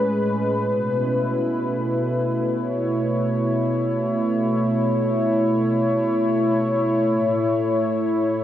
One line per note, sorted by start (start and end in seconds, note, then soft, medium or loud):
0.00 0.64 A2 medium
0.00 0.64 G#3 medium
0.00 2.22 C#4 medium
0.00 2.54 B4 medium
0.65 7.13 B2 medium
0.95 8.44 E4 medium
1.06 8.44 A3 medium
2.54 8.44 C#5 medium
7.09 8.44 A2 medium